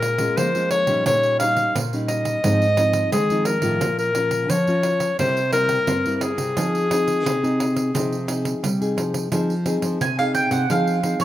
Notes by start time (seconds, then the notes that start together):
Already playing: A#2 G#3 C#4 F4 A#4
0.03 pandeiro
0.18 G#3 C#4 F4, pandeiro
0.37 F3 A#3 C5, pandeiro
0.55 G#3 C#4 F4, pandeiro
0.71 C#5, pandeiro
0.87 A#2 G3 C#4 D#4, pandeiro
1.06 A#2 C#5, pandeiro
1.23 pandeiro
1.40 G3 C#4 D#4 F5, pandeiro
1.57 pandeiro
1.75 A#2, pandeiro
1.93 G3 C#4 D#4, pandeiro
2.08 D#5, pandeiro
2.25 pandeiro
2.44 G#2 F3 C4 D#4, pandeiro
2.62 pandeiro
2.77 F3 C4 D#4, pandeiro
2.93 pandeiro
3.12 D#3 G#3 G#4, pandeiro
3.30 F3 C4 D#4, pandeiro
3.45 A#4, pandeiro
3.62 A2 F3 C#4 F4, pandeiro
3.81 A#2, pandeiro
3.99 A#4, pandeiro
4.15 F3 C#4 F4, pandeiro
4.31 pandeiro
4.50 F3 C#5, pandeiro
4.67 F3 C#4 F4, pandeiro
4.83 pandeiro
5.00 pandeiro
5.19 C3 G3 A#3 E4 C5, pandeiro
5.37 pandeiro
5.53 G3 A#3 E4 A#4, pandeiro
5.69 pandeiro
5.87 G2 C4, pandeiro
6.06 G3 A#3 E4, pandeiro
6.16 A#4
6.21 G#4, pandeiro
6.38 C3, pandeiro
6.57 F3 C4 D#4 G#4, pandeiro
6.75 pandeiro
6.91 C4 D#4 G#4, pandeiro
7.08 pandeiro
7.26 C3, pandeiro
7.43 C4 D#4 G#4, pandeiro
7.60 pandeiro
7.76 pandeiro
7.94 C3 F3 C4 D#4 G#4, pandeiro
8.12 pandeiro
8.28 C4 D#4 G#4, pandeiro
8.45 pandeiro
8.63 C3 G3, pandeiro
8.81 C4 D#4 G#4, pandeiro
8.97 F3, pandeiro
9.14 pandeiro
9.32 F3 C4 D#4 G#4, pandeiro
9.50 pandeiro
9.66 C4 D#4 G#4, pandeiro
9.82 F3, pandeiro
10.01 C3 G#5, pandeiro
10.19 C4 D#4 G#4 F5, pandeiro
10.35 G5, pandeiro
10.51 C3 F#5, pandeiro
10.70 F3 C4 D#4 G#4 F5, pandeiro
10.87 pandeiro
11.03 C4 D#4 G#4, pandeiro
11.20 F3 C#5, pandeiro